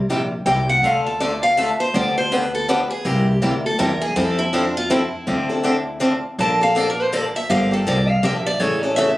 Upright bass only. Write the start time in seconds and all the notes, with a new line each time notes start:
0.09 A#1
0.46 C2
0.82 D2
1.94 D2
3.05 C2
3.42 D2
3.79 E2
4.16 F2
5.27 D2
6.38 A#1
7.50 G1
7.86 C2
8.23 A#1
8.60 A1